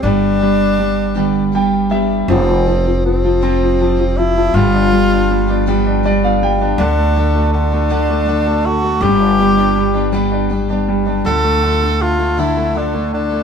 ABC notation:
X:1
M:6/8
L:1/16
Q:3/8=54
K:Gmix
V:1 name="Tenor saxophone"
D8 z4 | C4 C6 E2 | F6 z6 | D4 D6 ^F2 |
G6 z6 | A4 F2 E2 D2 D2 |]
V:2 name="Steel-string acoustic guitar"
[G,,D,G,B,DG]2 [G,B,DG]2 [G,B,DG]2 [G,,D,G,B,DG]2 [G,B,DG]2 [G,B,DG]2 | [F,A,CFG]2 [A,CFG] [CFG]2 [CFG] [F,A,CFG]2 [A,CFG] [CFG]2 [CFG] | [G,,D,F,B,FG]2 [F,B,FG] [F,B,FG]2 [F,B,FG] [G,,D,F,B,FG]2 [F,B,FG] [F,B,FG]2 [F,B,FG] | [D,A,D^FA]2 [A,DFA] [DFA]2 [DFA] [D,A,DFA]2 [A,DFA] [DFA]2 [DFA] |
[G,,D,G,B,DG]2 [G,B,DG] [G,B,DG]2 [G,B,DG] [G,,D,G,B,DG]2 [G,B,DG] [G,B,DG]2 [G,B,DG] | [D,F,DEA]2 [F,DEA] [DEA]2 [DEA] [D,F,DEA]2 [F,DEA] [DEA]2 [DEA] |]
V:3 name="Grand piano"
z8 g2 e2 | z12 | z8 d f g2 | z12 |
z12 | z12 |]
V:4 name="Grand piano" clef=bass
G,2 G,2 G,2 G,2 G,2 G,2 | F, F, F, F, F, F, C F, F, F, F, F, | G, D G, D G, D G, D G, D G, D | D, A, D, A, D, A, D, A, D, A, D, A, |
G, D G, D G, D G, D G, D G, D | D, A, D, A, D, A, D, A, D, A, D, A, |]
V:5 name="Upright bass" clef=bass
G,,,12 | F,,,12 | G,,,12 | D,,12 |
G,,,12 | D,,12 |]